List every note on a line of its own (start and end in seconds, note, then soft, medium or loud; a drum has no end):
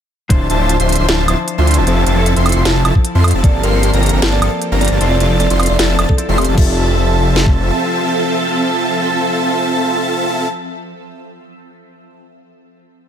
0.29 0.48 D1 loud
0.29 0.57 F3 medium
0.29 3.41 C4 medium
0.29 0.58 D4 medium
0.29 0.47 D4 medium
0.29 0.58 E4 medium
0.29 0.47 F4 medium
0.29 0.47 C5 medium
0.29 0.58 C5 loud
0.29 0.47 E5 medium
0.29 0.47 A5 medium
0.29 0.48 A5 medium
0.29 kick loud
0.29 closed hi-hat medium
0.50 0.78 D1 loud
0.50 0.77 D4 medium
0.50 0.77 F4 medium
0.50 0.77 C5 medium
0.50 0.77 E5 medium
0.50 0.77 A5 loud
0.50 closed hi-hat medium
0.58 1.25 F3 medium
0.58 1.26 D4 medium
0.58 1.26 E4 medium
0.62 1.27 C5 medium
0.69 closed hi-hat medium
0.80 0.97 D1 loud
0.80 0.97 D4 medium
0.80 0.97 F4 medium
0.80 0.97 C5 medium
0.80 0.97 E5 medium
0.80 0.97 C6 loud
0.80 closed hi-hat medium
0.89 closed hi-hat medium
0.92 closed hi-hat medium
0.96 1.07 D1 medium
0.96 1.06 D4 medium
0.96 1.06 F4 medium
0.96 1.06 C5 medium
0.96 1.06 E5 medium
0.96 1.06 C6 medium
0.96 closed hi-hat medium
1.00 1.06 C6 medium
1.09 1.26 D1 loud
1.09 1.26 D4 medium
1.09 1.26 F4 medium
1.09 1.26 C5 medium
1.09 1.26 E5 medium
1.09 1.26 A5 medium
1.09 snare loud
1.09 closed hi-hat medium
1.26 1.35 D1 loud
1.26 1.84 F3 medium
1.26 1.84 D4 medium
1.26 1.37 D4 medium
1.26 1.85 E4 medium
1.26 1.37 F4 medium
1.26 1.37 C5 medium
1.26 1.37 E5 medium
1.26 1.37 A5 medium
1.26 1.37 A5 loud
1.26 closed hi-hat medium
1.26 high woodblock medium
1.30 1.86 C5 loud
1.48 closed hi-hat medium
1.58 1.79 D2 loud
1.58 1.75 D4 loud
1.58 1.75 F4 medium
1.58 1.75 C5 medium
1.58 1.75 E5 medium
1.58 1.75 C6 loud
1.67 closed hi-hat medium
1.71 closed hi-hat medium
1.74 1.85 D1 medium
1.74 1.85 D4 medium
1.74 1.85 F4 medium
1.74 1.85 C5 medium
1.74 1.85 E5 medium
1.74 1.85 A5 medium
1.74 closed hi-hat medium
1.86 2.05 F1 loud
1.86 2.14 F3 medium
1.86 2.14 C4 medium
1.86 2.04 C4 medium
1.86 2.15 E4 medium
1.86 2.04 F4 medium
1.86 2.04 A4 medium
1.86 2.15 C5 medium
1.86 2.04 E5 medium
1.86 2.04 A5 medium
1.86 closed hi-hat medium
2.06 2.34 F1 loud
2.06 2.34 C4 medium
2.06 2.34 F4 medium
2.06 2.34 A4 medium
2.06 2.34 E5 medium
2.06 2.34 A5 loud
2.06 closed hi-hat medium
2.15 3.41 F3 medium
2.15 3.41 C4 medium
2.15 3.42 E4 medium
2.15 3.43 A4 loud
2.26 closed hi-hat medium
2.36 2.54 F1 loud
2.36 2.54 C4 medium
2.36 2.54 F4 medium
2.36 2.54 A4 medium
2.36 2.54 E5 medium
2.36 2.54 C6 loud
2.36 closed hi-hat medium
2.46 closed hi-hat soft
2.46 high woodblock medium
2.49 closed hi-hat medium
2.52 2.64 F1 loud
2.52 2.63 C4 medium
2.52 2.63 F4 medium
2.52 2.63 A4 medium
2.52 2.63 E5 medium
2.52 2.63 C6 medium
2.52 closed hi-hat medium
2.65 2.83 F1 medium
2.65 2.83 C4 medium
2.65 2.83 F4 medium
2.65 2.83 A4 medium
2.65 2.83 E5 medium
2.65 2.83 A5 medium
2.65 snare loud
2.65 closed hi-hat medium
2.85 2.92 F1 medium
2.85 2.94 C4 medium
2.85 2.94 F4 medium
2.85 2.94 A4 medium
2.85 2.94 E5 medium
2.85 2.94 A5 loud
2.85 closed hi-hat medium
2.85 high woodblock medium
2.95 kick medium
3.05 closed hi-hat medium
3.15 3.32 F2 loud
3.15 3.32 C4 loud
3.15 3.32 F4 medium
3.15 3.32 A4 medium
3.15 3.32 E5 medium
3.15 3.32 C6 loud
3.24 closed hi-hat medium
3.24 high woodblock medium
3.28 closed hi-hat medium
3.31 3.45 F1 loud
3.31 3.42 C4 medium
3.31 3.42 F4 medium
3.31 3.42 A4 medium
3.31 3.42 E5 medium
3.31 3.42 A5 medium
3.31 closed hi-hat medium
3.35 3.42 A5 medium
3.43 3.62 G1 medium
3.43 3.71 F3 medium
3.43 3.71 A#3 medium
3.43 3.61 C4 medium
3.43 3.71 C4 medium
3.43 3.61 G4 medium
3.43 3.72 A4 medium
3.43 3.61 A#4 medium
3.43 3.60 D5 loud
3.43 3.61 F5 medium
3.43 3.61 A5 medium
3.43 kick loud
3.43 closed hi-hat medium
3.63 3.91 G1 loud
3.63 3.91 C4 medium
3.63 3.91 G4 medium
3.63 3.88 A#4 loud
3.63 3.91 A#4 medium
3.63 3.91 F5 medium
3.63 3.91 C6 loud
3.63 closed hi-hat medium
3.72 4.39 F3 medium
3.72 4.39 A#3 medium
3.72 4.40 C4 medium
3.76 4.41 A4 medium
3.83 closed hi-hat medium
3.93 4.11 G1 loud
3.93 4.10 C4 medium
3.93 4.11 G4 medium
3.93 4.11 A#4 medium
3.93 4.11 F5 medium
3.93 4.11 A#5 loud
3.93 closed hi-hat medium
4.03 closed hi-hat soft
4.06 closed hi-hat medium
4.09 4.20 G1 loud
4.09 4.20 C4 medium
4.09 4.20 G4 medium
4.09 4.20 A#4 medium
4.09 4.20 F5 medium
4.09 4.20 A#5 medium
4.09 closed hi-hat medium
4.22 4.40 G1 loud
4.22 4.40 C4 medium
4.22 4.40 G4 medium
4.22 4.40 A#4 medium
4.22 4.40 F5 medium
4.22 4.40 A5 loud
4.22 4.40 A5 medium
4.22 snare loud
4.22 closed hi-hat medium
4.33 4.56 D5 loud
4.40 4.49 G1 medium
4.40 4.98 F3 medium
4.40 4.98 A#3 medium
4.40 4.51 C4 medium
4.40 4.99 C4 medium
4.40 4.51 G4 medium
4.40 4.51 A#4 medium
4.40 4.51 F5 medium
4.40 4.51 A5 medium
4.40 4.51 A5 loud
4.40 closed hi-hat medium
4.40 high woodblock medium
4.44 5.00 A4 loud
4.62 closed hi-hat medium
4.72 4.89 G1 loud
4.72 4.89 C4 loud
4.72 4.89 G4 medium
4.72 4.89 A#4 medium
4.72 4.89 F5 medium
4.72 4.89 A#5 loud
4.81 5.05 D5 medium
4.81 closed hi-hat soft
4.85 closed hi-hat medium
4.88 4.99 G1 loud
4.88 4.98 C4 medium
4.88 4.98 G4 medium
4.88 4.99 A#4 medium
4.88 4.98 F5 medium
4.88 4.99 A5 medium
4.88 closed hi-hat medium
5.00 5.18 F1 medium
5.00 5.28 F3 medium
5.00 5.28 C4 medium
5.00 5.18 C4 medium
5.00 5.28 E4 medium
5.00 5.18 F4 medium
5.00 5.18 A4 medium
5.00 5.29 C5 medium
5.00 5.18 E5 medium
5.00 5.18 A5 medium
5.00 closed hi-hat medium
5.11 5.35 D5 medium
5.20 5.48 F1 loud
5.20 5.48 C4 medium
5.20 5.48 F4 medium
5.20 5.48 A4 medium
5.20 5.48 E5 medium
5.20 5.48 A5 loud
5.20 closed hi-hat medium
5.29 6.16 F3 loud
5.29 6.16 C4 medium
5.29 6.17 E4 medium
5.29 6.18 A4 loud
5.40 5.64 D5 loud
5.40 closed hi-hat medium
5.50 5.68 F1 loud
5.50 5.67 C4 medium
5.50 5.67 F4 medium
5.50 5.67 A4 medium
5.50 5.67 E5 medium
5.50 5.67 C6 loud
5.50 closed hi-hat medium
5.60 closed hi-hat soft
5.60 high woodblock medium
5.63 closed hi-hat medium
5.66 5.77 F1 loud
5.66 5.77 C4 medium
5.66 5.77 F4 medium
5.66 5.77 A4 medium
5.66 6.01 D5 loud
5.66 5.77 E5 medium
5.66 5.77 C6 medium
5.66 closed hi-hat medium
5.79 5.97 F1 loud
5.79 5.97 C4 medium
5.79 5.97 F4 medium
5.79 5.97 A4 medium
5.79 5.97 E5 medium
5.79 5.97 A5 loud
5.79 snare loud
5.79 closed hi-hat medium
5.99 6.06 F1 medium
5.99 6.08 C4 medium
5.99 6.08 F4 medium
5.99 6.08 A4 medium
5.99 6.08 E5 medium
5.99 6.08 A5 medium
5.99 6.08 A5 loud
5.99 closed hi-hat medium
5.99 high woodblock medium
6.09 6.33 A4 loud
6.09 kick medium
6.17 6.26 F3 medium
6.17 6.26 C4 medium
6.17 6.26 E4 medium
6.17 6.27 A4 loud
6.17 closed hi-hat medium
6.28 6.46 F1 loud
6.28 6.35 F3 medium
6.28 6.36 C4 medium
6.28 6.46 C4 loud
6.28 6.36 E4 medium
6.28 6.46 F4 medium
6.28 6.46 A4 medium
6.28 6.36 A4 medium
6.28 6.46 E5 loud
6.28 6.46 C6 loud
6.38 6.54 G4 medium
6.38 closed hi-hat soft
6.38 high woodblock medium
6.41 closed hi-hat medium
6.45 6.56 F1 loud
6.45 6.55 C4 medium
6.45 6.55 F4 medium
6.45 6.55 A4 medium
6.45 6.55 E5 medium
6.45 6.55 A5 medium
6.45 closed hi-hat medium
6.55 7.71 F1 loud
6.55 10.93 F3 medium
6.55 10.47 F3 medium
6.55 10.95 C4 medium
6.55 10.47 C4 medium
6.55 10.47 F4 medium
6.55 10.96 F4 medium
6.55 10.47 A4 medium
6.55 10.47 E5 medium
6.55 10.47 A5 medium
6.55 10.47 A5 loud
6.55 kick loud
6.55 crash medium
6.59 10.99 A4 medium
6.59 10.97 E5 medium
7.36 snare medium
7.46 kick medium